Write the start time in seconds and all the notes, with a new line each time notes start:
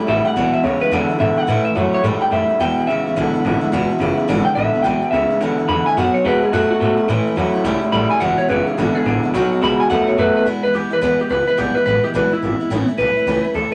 0.01 A3
0.07 A1 A2 E3 G3 A3 C#4 E4 E5
0.25 A3 C#4 E4 F#5, muted upright bass stroke
0.36 B1 E2 B2 E3 G#3 B3 E4
0.53 E3 G#3 B3 E4 E5, muted upright bass stroke
0.64 D2 E2 C#3 E3 G#3 B3 E4 C#5
0.80 E3 G#3 B3 E4 B4, muted upright bass stroke
0.91 E2 B2 D3 E3 G#3 B3 E4
1.08 E3 G#3 B3 E4
1.19 E2 G#2 D3 E3 G#3 B3 E4 E5
1.36 E3 G#3 B3 E4 F#5
1.47 A2 E3 A3 C#4 E4
1.64 A3 C#4 E4 E5, muted upright bass stroke
1.75 F#2 A2 E3 F#3 A3 C#4 E4 C#5
1.93 A3 C#4 E4 C#5
2.03 G#2 A2 E3 G3 A3 C#4 E4
2.21 A3 C#4 E4 G5, muted upright bass stroke
2.31 F#2 A2 E3 G3 A3 C#4 E4 E5
2.49 A3 C#4 E4, muted upright bass stroke
2.60 E2 B2 E3 G#3 B3 E4 G5
2.77 E3 G#3 B3 E4, muted upright bass stroke
2.87 A1 E2 C#3 E3 G#3 B3 E4 E5
3.06 E3 G#3 B3 E4, muted upright bass stroke
3.16 B1 E2 B2 D3 E3 G#3 B3 E4
3.34 E3 G#3 B3 E4, muted upright bass stroke
3.44 G#1 E2 D3 E3 G#3 B3 E4
3.61 E3 G#3 B3 E4
3.72 E1 E2 B2 E3 G#3 B3 E4
3.89 E3 G#3 B3 E4, muted upright bass stroke
3.99 F#1 E2 C#3 E3 G#3 B3 E4
4.17 E3 G#3 B3 E4
4.28 G#1 E2 B2 D3 E3 G#3 B3 E4
4.45 E3 G#3 B3 E4 G5
4.55 A1 E2 D3 E3 G#3 B3 E4 E5
4.73 E3 G#3 B3 E4
4.83 B1 E2 B2 E3 G#3 B3 E4 G5
5.02 G#3 B3 E4, muted upright bass stroke
5.11 C#2 E2 C#3 E3 G#3 B3 E5
5.15 E4
5.30 E3 G#3 B3 E4, muted upright bass stroke
5.40 D2 E2 B2 D3 E3 G#3 B3 E4
5.58 E3 G#3 B3 E4, muted upright bass stroke
5.68 E2 D3 E3 G#3 B3 E4 B5
5.86 E3 G#3 B3 E4 G#5, muted upright bass stroke
5.97 F#2 B2 F#3 B3 D#4 F#4 F#5
6.14 B3 D#4 F#4 C#5
6.25 D#2 B2 F#3 G#3 B3 D#4 F#4 B4
6.42 B3 D#4 F#4 G#4, muted upright bass stroke
6.52 F#2 B2 F#3 A3 B3 D#4 F#4
6.70 B3 D#4 F#4, muted upright bass stroke
6.80 G#2 B2 F#3 A3 B3 D#4 F#4
6.97 B3 D#4 F#4, muted upright bass stroke
7.08 A2 E3 A3 C#4 E4
7.25 A3 C#4 E4
7.36 E2 A2 E3 F#3 A3 C#4 E4
7.54 A3 C#4 E4, muted upright bass stroke
7.64 C#2 A2 E3 G3 A3 C#4 E4
7.81 A3 C#4 E4, muted upright bass stroke
7.92 A1 A2 E3 G3 A3 C#4 E4 B5
8.10 A3 C#4 E4 G#5
8.20 E1 E2 B2 E3 G#3 B3 E4 F#5
8.38 E3 G#3 B3 E4 C#5, muted upright bass stroke
8.49 F#1 E2 C#3 E3 G#3 B3 E4 B4
8.66 E3 G#3 B3 E4 G#4, muted upright bass stroke
8.77 G#1 E2 B2 D3 E3 G#3 B3 E4 F#4
8.95 E3 G#3 B3 E4 G#4, muted upright bass stroke
9.05 A1 E2 D3 E3 G#3 B3 E4
9.23 E3 G#3 B3 E4
9.34 B1 B2 F#3 B3 D#4 F#4
9.51 B3 D#4 F#4, muted upright bass stroke
9.62 C#2 B2 F#3 G#3 B3 D#4 F#4 B5
9.79 B3 D#4 F#4 G#5, muted upright bass stroke
9.90 D#2 B2 F#3 A3 B3 D#4 F#4 F#5
10.08 B3 D#4 F#4 C#5
10.17 F#2 B2 F#3 A3 B3 D#4 F#4 B4
10.35 B3 D#4 F#4 B4, muted upright bass stroke
10.45 E2 B2 E3 G#3 B3 E4
10.63 E3 G#3 B3 E4 B4, muted upright bass stroke
10.73 D#2 E3 G#3 B3 E4 G4
10.90 E3 G#3 B3 E4 B4, muted upright bass stroke
11.01 D2 E2 B2 E3 G#3 B3 E4 B4
11.18 E3 G#3 B3 E4 G4, muted upright bass stroke
11.29 C#2 E3 G#3 B3 E4 B4
11.47 E3 G#3 B3 E4 B4, muted upright bass stroke
11.57 B1 E2 B2 E3 G#3 B3 E4 G4
11.75 E3 G#3 B3 E4 B4, muted upright bass stroke
11.86 A1 E3 G#3 B3 E4 B4
12.04 E3 G#3 B3 E4 G4
12.14 B1 E2 B2 E3 G#3 B3 E4 B4
12.31 E3 G#3 B3 E4, muted upright bass stroke
12.42 G#1 E3 G#3 B3 E4
12.60 E3 G#3 B3 E4
12.70 A1 A2 E3 A3 C#4 E4
12.88 A3 C#4 E4
12.98 B1 E3 A3 C#4 E4 B4
13.16 A3 C#4 E4, muted upright bass stroke
13.26 C#2 A2 E3 A3 C#4 E4
13.43 A3 C#4 E4, muted upright bass stroke
13.54 D2 E3 A3 C#4 E4 A4